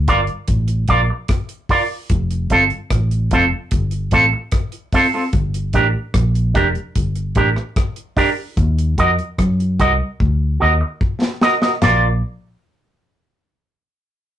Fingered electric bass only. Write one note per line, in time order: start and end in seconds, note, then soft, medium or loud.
0.09 0.28 G1 loud
0.49 0.87 A1 medium
0.90 1.09 A#1 medium
2.11 2.49 F1 loud
2.51 2.70 G1 medium
2.91 3.30 A1 loud
3.32 3.51 F1 loud
3.73 4.11 G1 medium
4.13 4.32 A1 medium
5.34 5.72 G1 loud
5.75 5.94 A1 medium
6.14 6.53 A#1 loud
6.56 6.75 F1 medium
6.97 7.35 G1 medium
7.37 7.56 A1 medium
8.58 8.96 D#2 loud
8.99 9.18 F2 medium
9.39 9.78 F#2 loud
9.80 9.99 C2 medium
10.21 10.59 D2 medium
10.62 10.81 D#2 medium
11.84 12.21 A#1 medium